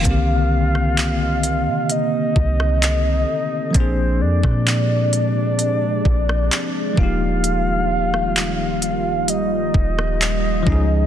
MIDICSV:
0, 0, Header, 1, 6, 480
1, 0, Start_track
1, 0, Key_signature, -3, "minor"
1, 0, Tempo, 923077
1, 27, Time_signature, 4, 2, 24, 8
1, 5754, End_track
2, 0, Start_track
2, 0, Title_t, "Soft synth lead"
2, 0, Program_c, 0, 80
2, 0, Note_on_c, 0, 77, 125
2, 994, Note_on_c, 0, 75, 117
2, 1002, Note_off_c, 0, 77, 0
2, 1954, Note_on_c, 0, 72, 103
2, 1962, Note_off_c, 0, 75, 0
2, 2191, Note_on_c, 0, 74, 117
2, 2199, Note_off_c, 0, 72, 0
2, 3629, Note_off_c, 0, 74, 0
2, 3634, Note_on_c, 0, 77, 124
2, 4834, Note_on_c, 0, 75, 103
2, 4841, Note_off_c, 0, 77, 0
2, 5754, Note_off_c, 0, 75, 0
2, 5754, End_track
3, 0, Start_track
3, 0, Title_t, "Tine electric piano"
3, 0, Program_c, 1, 4
3, 0, Control_c, 1, 64, 127
3, 5, Note_on_c, 1, 51, 69
3, 17, Note_on_c, 1, 58, 66
3, 30, Note_on_c, 1, 60, 64
3, 32, Control_c, 1, 64, 0
3, 43, Note_on_c, 1, 50, 63
3, 55, Note_on_c, 1, 67, 73
3, 114, Control_c, 1, 64, 127
3, 1915, Note_off_c, 1, 51, 0
3, 1921, Note_off_c, 1, 58, 0
3, 1927, Note_off_c, 1, 60, 0
3, 1927, Note_on_c, 1, 53, 68
3, 1934, Note_off_c, 1, 50, 0
3, 1939, Note_on_c, 1, 58, 62
3, 1940, Note_off_c, 1, 67, 0
3, 1952, Note_on_c, 1, 60, 64
3, 1953, Control_c, 1, 64, 0
3, 1964, Note_on_c, 1, 62, 65
3, 1977, Note_on_c, 1, 68, 79
3, 2053, Control_c, 1, 64, 127
3, 3596, Note_off_c, 1, 53, 0
3, 3602, Note_off_c, 1, 58, 0
3, 3606, Note_on_c, 1, 53, 63
3, 3609, Note_off_c, 1, 60, 0
3, 3615, Note_off_c, 1, 62, 0
3, 3619, Note_on_c, 1, 58, 62
3, 3621, Note_off_c, 1, 68, 0
3, 3631, Note_on_c, 1, 65, 59
3, 3633, Control_c, 1, 64, 0
3, 3644, Note_on_c, 1, 63, 59
3, 3656, Note_on_c, 1, 67, 69
3, 3713, Control_c, 1, 64, 127
3, 5515, Note_off_c, 1, 53, 0
3, 5522, Note_off_c, 1, 58, 0
3, 5525, Note_on_c, 1, 53, 81
3, 5528, Note_off_c, 1, 65, 0
3, 5535, Note_off_c, 1, 63, 0
3, 5538, Note_on_c, 1, 56, 69
3, 5541, Note_off_c, 1, 67, 0
3, 5551, Note_on_c, 1, 61, 73
3, 5553, Control_c, 1, 64, 0
3, 5562, Note_on_c, 1, 63, 70
3, 5575, Note_on_c, 1, 68, 85
3, 5635, Control_c, 1, 64, 127
3, 5754, Note_off_c, 1, 53, 0
3, 5754, Note_off_c, 1, 56, 0
3, 5754, Note_off_c, 1, 61, 0
3, 5754, Note_off_c, 1, 63, 0
3, 5754, Note_off_c, 1, 68, 0
3, 5754, End_track
4, 0, Start_track
4, 0, Title_t, "Ambient pad"
4, 0, Program_c, 2, 92
4, 25, Note_on_c, 2, 48, 76
4, 26, Note_on_c, 2, 75, 85
4, 28, Note_on_c, 2, 58, 74
4, 978, Note_off_c, 2, 58, 0
4, 987, Note_on_c, 2, 69, 73
4, 1927, Note_off_c, 2, 48, 0
4, 1927, Note_off_c, 2, 75, 0
4, 1937, Note_off_c, 2, 69, 0
4, 1949, Note_on_c, 2, 56, 72
4, 1950, Note_on_c, 2, 48, 78
4, 1950, Note_on_c, 2, 62, 93
4, 3611, Note_off_c, 2, 48, 0
4, 3611, Note_off_c, 2, 56, 0
4, 3612, Note_off_c, 2, 62, 0
4, 3624, Note_on_c, 2, 55, 76
4, 3624, Note_on_c, 2, 65, 87
4, 3625, Note_on_c, 2, 51, 80
4, 5526, Note_off_c, 2, 51, 0
4, 5526, Note_off_c, 2, 55, 0
4, 5546, Note_on_c, 2, 49, 79
4, 5546, Note_on_c, 2, 61, 73
4, 5754, Note_off_c, 2, 49, 0
4, 5754, Note_off_c, 2, 61, 0
4, 5754, Note_off_c, 2, 65, 0
4, 5754, End_track
5, 0, Start_track
5, 0, Title_t, "808-style bass"
5, 0, Program_c, 3, 38
5, 29, Note_on_c, 3, 36, 104
5, 870, Note_on_c, 3, 48, 98
5, 878, Note_off_c, 3, 36, 0
5, 1210, Note_off_c, 3, 48, 0
5, 1229, Note_on_c, 3, 36, 106
5, 1689, Note_off_c, 3, 36, 0
5, 1950, Note_on_c, 3, 34, 108
5, 2191, Note_on_c, 3, 41, 103
5, 2199, Note_off_c, 3, 34, 0
5, 2303, Note_off_c, 3, 41, 0
5, 2307, Note_on_c, 3, 46, 109
5, 3126, Note_off_c, 3, 46, 0
5, 3149, Note_on_c, 3, 34, 112
5, 3378, Note_off_c, 3, 34, 0
5, 3628, Note_on_c, 3, 27, 103
5, 5047, Note_off_c, 3, 27, 0
5, 5068, Note_on_c, 3, 27, 108
5, 5528, Note_off_c, 3, 27, 0
5, 5548, Note_on_c, 3, 37, 102
5, 5754, Note_off_c, 3, 37, 0
5, 5754, End_track
6, 0, Start_track
6, 0, Title_t, "Drums"
6, 26, Note_on_c, 9, 42, 86
6, 27, Note_on_c, 9, 36, 117
6, 78, Note_off_c, 9, 42, 0
6, 79, Note_off_c, 9, 36, 0
6, 390, Note_on_c, 9, 37, 65
6, 442, Note_off_c, 9, 37, 0
6, 506, Note_on_c, 9, 42, 60
6, 510, Note_on_c, 9, 39, 113
6, 558, Note_off_c, 9, 42, 0
6, 562, Note_off_c, 9, 39, 0
6, 746, Note_on_c, 9, 42, 72
6, 798, Note_off_c, 9, 42, 0
6, 985, Note_on_c, 9, 42, 69
6, 1037, Note_off_c, 9, 42, 0
6, 1227, Note_on_c, 9, 36, 97
6, 1279, Note_off_c, 9, 36, 0
6, 1352, Note_on_c, 9, 37, 91
6, 1404, Note_off_c, 9, 37, 0
6, 1471, Note_on_c, 9, 39, 115
6, 1471, Note_on_c, 9, 42, 74
6, 1523, Note_off_c, 9, 39, 0
6, 1523, Note_off_c, 9, 42, 0
6, 1947, Note_on_c, 9, 42, 86
6, 1948, Note_on_c, 9, 36, 118
6, 1999, Note_off_c, 9, 42, 0
6, 2000, Note_off_c, 9, 36, 0
6, 2306, Note_on_c, 9, 36, 102
6, 2310, Note_on_c, 9, 37, 64
6, 2358, Note_off_c, 9, 36, 0
6, 2362, Note_off_c, 9, 37, 0
6, 2427, Note_on_c, 9, 42, 61
6, 2430, Note_on_c, 9, 39, 107
6, 2479, Note_off_c, 9, 42, 0
6, 2482, Note_off_c, 9, 39, 0
6, 2667, Note_on_c, 9, 42, 70
6, 2719, Note_off_c, 9, 42, 0
6, 2906, Note_on_c, 9, 42, 76
6, 2958, Note_off_c, 9, 42, 0
6, 3147, Note_on_c, 9, 36, 89
6, 3199, Note_off_c, 9, 36, 0
6, 3272, Note_on_c, 9, 37, 94
6, 3324, Note_off_c, 9, 37, 0
6, 3391, Note_on_c, 9, 39, 119
6, 3391, Note_on_c, 9, 42, 71
6, 3443, Note_off_c, 9, 39, 0
6, 3443, Note_off_c, 9, 42, 0
6, 3627, Note_on_c, 9, 36, 104
6, 3679, Note_off_c, 9, 36, 0
6, 3868, Note_on_c, 9, 42, 81
6, 3920, Note_off_c, 9, 42, 0
6, 4232, Note_on_c, 9, 37, 64
6, 4284, Note_off_c, 9, 37, 0
6, 4347, Note_on_c, 9, 42, 59
6, 4351, Note_on_c, 9, 39, 118
6, 4399, Note_off_c, 9, 42, 0
6, 4403, Note_off_c, 9, 39, 0
6, 4587, Note_on_c, 9, 42, 69
6, 4639, Note_off_c, 9, 42, 0
6, 4827, Note_on_c, 9, 42, 73
6, 4879, Note_off_c, 9, 42, 0
6, 5067, Note_on_c, 9, 36, 93
6, 5119, Note_off_c, 9, 36, 0
6, 5193, Note_on_c, 9, 37, 99
6, 5245, Note_off_c, 9, 37, 0
6, 5312, Note_on_c, 9, 39, 116
6, 5312, Note_on_c, 9, 42, 73
6, 5364, Note_off_c, 9, 39, 0
6, 5364, Note_off_c, 9, 42, 0
6, 5547, Note_on_c, 9, 36, 100
6, 5599, Note_off_c, 9, 36, 0
6, 5754, End_track
0, 0, End_of_file